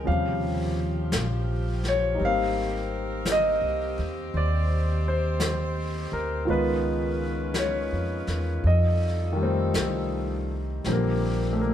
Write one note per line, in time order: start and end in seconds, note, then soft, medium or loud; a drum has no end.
0.00 2.19 C#3 soft
0.00 0.11 G5 medium
0.05 1.10 D#2 medium
0.05 2.22 C3 soft
0.05 2.20 F3 soft
0.05 2.19 F3 medium
0.05 2.17 G3 soft
0.05 6.45 G4 medium
0.05 1.10 F5 medium
0.05 brush sweep soft
1.12 2.17 A#1 medium
1.12 brush sweep soft
1.12 snare soft
1.12 hi-hat pedal soft
1.84 snare soft
1.88 2.24 C#5 medium
2.14 6.47 G3 soft
2.14 6.46 D#4 soft
2.14 brush sweep soft
2.19 3.59 G#1 medium
2.19 6.44 C4 medium
2.19 4.17 A#4 medium
2.23 6.50 A#3 soft
2.23 6.51 C4 soft
2.23 3.26 F5 medium
3.25 brush sweep soft
3.25 snare soft
3.25 hi-hat pedal medium
3.32 4.40 D#5 medium
3.61 3.95 C2 soft
3.98 4.32 D#2 medium
4.33 6.08 D#2 medium
4.33 6.46 C5 medium
4.33 5.08 D5 medium
4.33 brush sweep soft
5.08 6.17 C5 medium
5.40 brush sweep soft
5.40 snare soft
5.40 hi-hat pedal soft
6.12 6.46 D2 medium
6.12 6.50 A#4 medium
6.45 7.88 C#2 medium
6.45 8.63 D#3 soft
6.45 8.63 D#3 medium
6.45 8.65 G#3 soft
6.45 8.63 C#4 medium
6.45 8.64 F4 soft
6.45 10.67 F4 medium
6.45 8.63 B4 medium
6.45 brush sweep soft
6.50 8.66 B3 soft
6.50 7.61 B4 medium
7.54 brush sweep soft
7.54 snare soft
7.54 hi-hat pedal soft
7.59 8.69 C#5 medium
7.92 8.26 F2 soft
8.27 8.62 E2 medium
8.27 snare soft
8.63 9.71 F2 medium
8.63 10.67 G3 medium
8.63 10.67 D#4 medium
8.63 10.67 A4 medium
8.63 brush sweep soft
8.67 10.45 D#5 medium
9.33 10.83 D#3 medium
9.33 10.85 G3 soft
9.40 10.87 A3 soft
9.40 10.86 C4 medium
9.74 10.82 C2 medium
9.74 brush sweep soft
9.74 snare soft
9.74 hi-hat pedal soft
10.84 11.74 A#1 medium
10.84 11.74 D3 soft
10.84 11.74 F3 soft
10.84 11.74 G3 soft
10.84 11.74 C4 soft
10.84 11.74 G4 soft
10.84 11.74 A#4 soft
10.84 11.74 D5 medium
10.84 brush sweep soft
10.84 snare soft
10.92 11.53 A#3 medium
11.53 11.60 A3 soft
11.61 11.74 A#3 medium